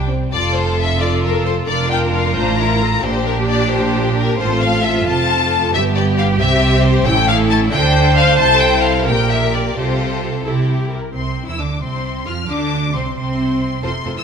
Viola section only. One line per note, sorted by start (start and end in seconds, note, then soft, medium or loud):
1.01 1.64 A4 medium
1.68 2.35 A#4 medium
2.37 2.59 C5 medium
2.59 2.81 A#4 medium
2.82 3.04 A4 medium
3.04 4.36 G4 loud
4.38 5.70 F4 loud
5.74 7.04 G4 loud
7.06 7.72 E4 loud
7.73 9.07 C5 loud
9.07 9.76 A#4 medium
9.76 10.40 G4 medium
10.45 10.53 A4 medium
10.69 10.92 G4 medium
10.91 11.15 A#4 medium
11.14 11.46 C4 medium
11.47 11.59 E4 medium
11.59 11.82 D4 soft
11.82 12.26 C4 medium
12.27 12.35 F4 medium
12.50 12.94 D4 medium
12.94 13.16 C4 soft
13.17 13.82 C4 medium
13.84 13.92 C4 medium
13.84 13.92 F4 medium
14.05 14.13 C4 soft
14.05 14.13 F4 soft